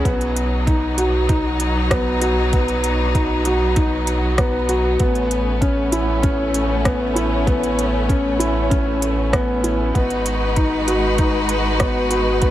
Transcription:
0.05 4.97 B1 medium
0.05 4.96 F#3 medium
0.05 9.90 B3 medium
0.05 0.34 B3 medium
0.05 4.96 D#4 loud
0.05 kick loud
0.05 closed hi-hat soft
0.21 closed hi-hat soft
0.36 closed hi-hat medium
0.67 0.96 D#4 medium
0.67 kick loud
0.67 closed hi-hat soft
0.97 1.27 F#4 medium
0.97 closed hi-hat medium
1.29 1.58 D#4 medium
1.29 kick loud
1.29 closed hi-hat soft
1.60 closed hi-hat medium
1.91 2.08 B3 medium
1.91 kick loud
1.91 cross-stick medium
1.91 closed hi-hat soft
2.21 2.51 F#4 medium
2.21 closed hi-hat medium
2.53 2.82 B3 medium
2.53 kick loud
2.53 closed hi-hat soft
2.68 closed hi-hat soft
2.84 closed hi-hat medium
3.15 3.44 D#4 medium
3.15 kick loud
3.15 closed hi-hat soft
3.45 3.75 F#4 medium
3.45 closed hi-hat medium
3.76 4.05 D#4 medium
3.76 kick loud
3.76 closed hi-hat soft
4.07 closed hi-hat medium
4.38 4.56 B3 loud
4.38 kick loud
4.38 cross-stick medium
4.38 closed hi-hat soft
4.69 4.98 F#4 medium
4.69 closed hi-hat medium
5.00 9.92 A1 medium
5.00 9.91 A3 medium
5.00 5.29 B3 medium
5.00 9.91 C#4 medium
5.00 kick loud
5.00 closed hi-hat soft
5.15 closed hi-hat soft
5.31 closed hi-hat medium
5.61 5.91 C#4 medium
5.61 kick loud
5.61 closed hi-hat soft
5.92 6.22 E4 medium
5.92 closed hi-hat medium
6.23 6.52 C#4 medium
6.23 kick loud
6.23 closed hi-hat soft
6.54 closed hi-hat medium
6.85 7.03 B3 medium
6.85 kick loud
6.85 cross-stick medium
6.85 closed hi-hat soft
7.15 7.45 E4 medium
7.15 closed hi-hat medium
7.47 7.76 B3 medium
7.47 kick loud
7.47 closed hi-hat soft
7.63 closed hi-hat soft
7.79 closed hi-hat medium
8.08 8.38 C#4 medium
8.08 kick loud
8.08 closed hi-hat soft
8.39 8.69 E4 medium
8.39 closed hi-hat medium
8.70 9.00 C#4 medium
8.70 kick loud
8.70 closed hi-hat soft
9.02 closed hi-hat medium
9.33 9.50 B3 loud
9.33 kick loud
9.33 cross-stick medium
9.33 closed hi-hat soft
9.63 9.93 E4 medium
9.63 closed hi-hat medium
9.94 12.51 G#1 medium
9.94 12.51 G#3 medium
9.94 10.24 B3 medium
9.94 12.51 D#4 medium
9.94 12.51 F#4 medium
9.94 12.51 B4 loud
9.94 kick loud
9.94 closed hi-hat soft
10.10 closed hi-hat soft
10.26 closed hi-hat medium
10.56 10.86 D#4 medium
10.56 kick loud
10.56 closed hi-hat soft
10.87 11.17 F#4 medium
10.87 closed hi-hat medium
11.18 11.48 D#4 medium
11.18 kick loud
11.18 closed hi-hat soft
11.49 closed hi-hat medium
11.80 11.98 B3 loud
11.80 kick loud
11.80 cross-stick medium
11.80 closed hi-hat soft
12.11 12.40 F#4 medium
12.11 closed hi-hat medium
12.42 12.51 B3 medium
12.42 kick loud
12.42 closed hi-hat soft

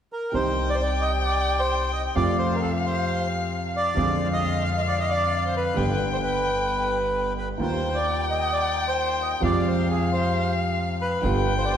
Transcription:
0.13 0.35 A#4 medium
0.32 2.07 C2 soft
0.32 2.07 C2 medium
0.32 2.07 C3 soft
0.32 2.06 D#3 soft
0.32 2.07 G3 soft
0.32 0.69 C5 medium
0.32 2.17 G5 medium
0.36 2.08 D#4 soft
0.69 0.76 D5 medium
0.75 0.82 C5 medium
0.82 1.03 D5 medium
1.01 1.12 D#5 medium
1.25 1.60 D5 medium
1.59 1.91 C5 medium
1.92 2.02 D#5 medium
2.15 3.88 F2 medium
2.15 3.88 F2 soft
2.15 3.87 C3 soft
2.15 3.88 F3 soft
2.15 3.88 A3 soft
2.15 3.89 F4 medium
2.15 2.37 D5 medium
2.15 3.95 F5 medium
2.39 2.56 C5 medium
2.55 2.61 A#4 soft
2.62 2.72 A4 medium
2.86 3.27 C5 medium
3.77 4.28 D5 medium
3.95 5.69 F2 medium
3.95 5.68 D3 soft
3.95 5.69 F3 medium
3.95 5.69 G#3 soft
3.95 5.69 F4 medium
3.95 5.78 F5 medium
4.33 4.63 D#5 medium
4.65 4.70 F5 medium
4.77 4.82 D#5 medium
4.88 4.98 D5 medium
5.00 5.10 D#5 medium
5.10 5.45 D5 medium
5.45 5.55 C5 medium
5.57 6.09 B4 medium
5.74 7.51 G1 medium
5.74 7.50 G2 soft
5.74 7.49 D3 soft
5.74 7.50 G3 soft
5.74 7.51 B3 soft
5.74 7.51 G4 soft
5.74 7.37 G5 medium
6.13 6.18 C5 medium
6.23 7.33 B4 medium
7.39 7.49 B4 medium
7.58 9.33 D#2 soft
7.58 9.34 D#2 soft
7.58 9.34 D#3 soft
7.58 9.33 G3 soft
7.58 9.34 A#3 soft
7.58 9.34 F4 soft
7.58 9.44 G5 medium
7.63 7.97 C5 medium
7.95 8.27 D5 medium
8.30 8.53 D#5 medium
8.53 8.87 D5 medium
8.88 9.22 C5 medium
9.22 9.32 D#5 medium
9.40 11.14 F2 medium
9.40 11.13 C3 soft
9.40 11.14 F3 medium
9.40 11.15 G#3 soft
9.40 11.15 F4 soft
9.40 11.23 F5 medium
9.44 9.67 D5 medium
9.67 9.88 C5 medium
9.90 10.10 G#4 medium
10.12 10.54 C5 medium
11.01 11.54 B4 medium
11.22 11.77 G1 medium
11.22 11.77 G2 medium
11.22 11.77 D3 soft
11.22 11.77 G3 soft
11.22 11.77 B3 soft
11.22 11.77 F4 soft
11.22 11.77 G5 medium
11.58 11.65 C5 medium
11.65 11.72 D5 medium
11.71 11.77 C5 medium

